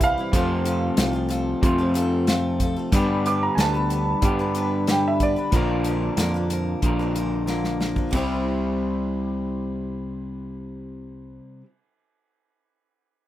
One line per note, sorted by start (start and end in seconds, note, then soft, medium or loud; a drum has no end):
0.00 0.16 C2 medium
0.00 0.30 C3 medium
0.00 0.31 E3 medium
0.00 0.31 G3 medium
0.00 0.17 G3 medium
0.00 0.32 C4 medium
0.00 0.17 C4 medium
0.00 0.32 E4 medium
0.00 0.18 E4 medium
0.00 1.92 F5 medium
0.00 kick medium
0.00 closed hi-hat medium
0.04 0.17 G4 medium
0.18 0.33 C4 soft
0.18 0.34 E4 soft
0.18 0.33 G4 medium
0.32 1.60 F2 medium
0.32 0.89 F2 medium
0.32 1.61 C3 medium
0.32 0.64 F3 medium
0.32 1.61 F3 medium
0.32 1.61 A3 medium
0.32 0.65 C4 medium
0.32 1.62 C4 loud
0.32 0.66 F4 medium
0.32 1.62 F4 loud
0.32 0.66 A4 loud
0.32 kick loud
0.32 closed hi-hat medium
0.65 0.96 F3 medium
0.65 0.97 C4 medium
0.65 0.97 F4 medium
0.65 0.98 A4 medium
0.65 closed hi-hat medium
0.97 1.54 C2 medium
0.97 1.13 F3 medium
0.97 1.14 C4 medium
0.97 1.13 F4 medium
0.97 1.12 A4 medium
0.97 snare loud
0.97 closed hi-hat medium
1.13 1.28 C4 soft
1.13 1.29 F4 medium
1.13 1.30 A4 medium
1.29 1.78 F3 medium
1.29 1.78 C4 medium
1.29 1.78 F4 medium
1.29 1.77 A4 medium
1.29 closed hi-hat medium
1.61 2.90 F2 medium
1.61 2.75 F2 medium
1.61 2.90 C3 medium
1.61 2.91 F3 medium
1.61 2.91 A3 medium
1.61 2.91 C4 medium
1.61 kick loud
1.61 closed hi-hat medium
1.65 2.92 F4 medium
1.78 1.94 C4 soft
1.78 1.95 F4 medium
1.78 1.95 A4 medium
1.94 2.27 F3 medium
1.94 2.28 C4 medium
1.94 2.28 F4 medium
1.94 2.28 A4 medium
1.94 closed hi-hat medium
2.27 2.59 F3 medium
2.27 2.60 C4 medium
2.27 2.61 F4 medium
2.27 2.61 A4 medium
2.27 snare loud
2.27 closed hi-hat medium
2.60 2.76 F3 medium
2.60 2.77 C4 medium
2.60 2.77 F4 medium
2.60 2.75 A4 medium
2.60 kick medium
2.60 closed hi-hat medium
2.76 2.94 C4 soft
2.76 2.93 F4 soft
2.76 2.92 A4 medium
2.92 4.20 G2 medium
2.92 3.49 G2 medium
2.92 3.25 G2 medium
2.92 4.21 D3 medium
2.92 3.25 D3 medium
2.92 4.21 G3 medium
2.92 3.24 G3 loud
2.92 3.25 B3 medium
2.92 4.21 B3 medium
2.92 3.26 D4 medium
2.92 4.24 D4 loud
2.92 4.22 G4 medium
2.92 3.26 B4 medium
2.92 kick loud
2.92 closed hi-hat medium
3.25 3.58 G3 medium
3.25 3.58 B3 medium
3.25 3.58 D4 medium
3.25 3.58 B4 medium
3.25 3.41 D6 medium
3.25 closed hi-hat medium
3.43 3.57 A#5 medium
3.55 4.14 D2 medium
3.55 3.74 G2 medium
3.55 3.74 D3 medium
3.55 3.74 G3 medium
3.55 3.74 B3 medium
3.55 3.59 G#5 medium
3.55 snare loud
3.55 closed hi-hat medium
3.59 3.74 D4 medium
3.59 3.73 B4 medium
3.59 4.85 A5 medium
3.74 3.89 G3 soft
3.74 3.91 B3 soft
3.74 3.91 D4 medium
3.74 3.90 B4 medium
3.90 4.39 G3 medium
3.90 4.39 B3 medium
3.90 4.39 D4 medium
3.90 4.38 B4 medium
3.90 closed hi-hat medium
4.22 5.50 G2 medium
4.22 5.35 G2 medium
4.22 5.51 D3 medium
4.22 5.51 G3 medium
4.22 5.51 B3 medium
4.22 5.52 D4 medium
4.22 5.52 G4 medium
4.22 kick loud
4.22 closed hi-hat medium
4.39 4.53 G3 soft
4.39 4.54 B3 soft
4.39 4.55 D4 soft
4.39 4.55 B4 medium
4.55 4.87 G3 medium
4.55 4.88 B3 medium
4.55 4.88 D4 medium
4.55 4.88 B4 medium
4.55 closed hi-hat medium
4.87 5.20 G2 medium
4.87 5.20 D3 medium
4.87 5.19 G3 medium
4.87 5.20 B3 medium
4.87 5.21 D4 medium
4.87 5.21 B4 medium
4.87 5.04 G5 medium
4.87 snare medium
4.87 closed hi-hat medium
5.08 5.21 E5 medium
5.20 5.36 G3 soft
5.20 5.37 B3 medium
5.20 5.36 D4 medium
5.20 5.35 B4 medium
5.20 7.13 D5 medium
5.20 kick medium
5.20 closed hi-hat medium
5.36 5.54 G3 soft
5.36 5.54 B3 soft
5.36 5.53 D4 medium
5.36 5.52 B4 medium
5.51 6.09 A#1 medium
5.51 6.80 A#2 medium
5.51 5.85 A#2 medium
5.51 6.81 D3 medium
5.51 5.86 D3 medium
5.51 6.81 F3 medium
5.51 5.85 F3 medium
5.51 6.82 A#3 medium
5.51 5.86 A#3 medium
5.51 6.82 D4 medium
5.51 5.86 D4 medium
5.51 kick loud
5.51 closed hi-hat medium
5.55 5.87 A#4 medium
5.55 6.82 A#4 loud
5.84 6.18 F3 medium
5.84 6.19 A#3 medium
5.84 6.19 D4 medium
5.84 closed hi-hat medium
5.89 6.19 A#4 medium
6.17 6.74 F2 medium
6.17 6.34 A#2 medium
6.17 6.35 D3 medium
6.17 6.35 F3 medium
6.17 6.35 A#3 medium
6.17 6.34 D4 medium
6.17 6.33 A#4 medium
6.17 snare medium
6.17 closed hi-hat medium
6.34 6.49 F3 soft
6.34 6.50 A#3 medium
6.34 6.51 D4 soft
6.34 6.50 A#4 medium
6.50 6.99 F3 medium
6.50 7.00 A#3 medium
6.50 6.99 D4 medium
6.50 6.98 A#4 medium
6.50 closed hi-hat medium
6.82 7.96 A#1 medium
6.82 8.11 A#2 medium
6.82 8.11 D3 medium
6.82 8.12 F3 medium
6.82 8.12 A#3 medium
6.82 8.12 D4 medium
6.82 kick medium
6.82 closed hi-hat medium
6.86 8.13 A#4 medium
6.99 7.15 F3 soft
6.99 7.15 A#3 soft
6.99 7.16 D4 medium
6.99 7.15 A#4 medium
7.15 7.47 F3 medium
7.15 7.47 A#3 medium
7.15 7.47 D4 medium
7.15 7.47 A#4 medium
7.15 closed hi-hat medium
7.47 7.80 A#2 medium
7.47 7.80 D3 medium
7.47 7.79 F3 medium
7.47 7.80 A#3 medium
7.47 7.81 D4 medium
7.47 7.81 A#4 medium
7.47 snare soft
7.64 snare soft
7.80 7.97 F3 soft
7.80 7.97 A#3 medium
7.80 7.95 D4 soft
7.80 7.95 A#4 medium
7.80 snare medium
7.96 8.13 F3 soft
7.96 8.14 A#3 soft
7.96 8.13 D4 soft
7.96 8.13 A#4 medium
7.96 kick medium
8.11 11.39 C2 medium
8.11 11.61 C3 medium
8.11 11.62 C3 loud
8.11 11.63 G3 medium
8.11 11.64 C4 loud
8.11 kick medium
8.11 ride medium
8.15 11.65 C4 medium
8.15 11.65 E4 medium
8.15 11.67 E4 medium
8.15 11.66 G4 medium
8.15 11.68 C5 medium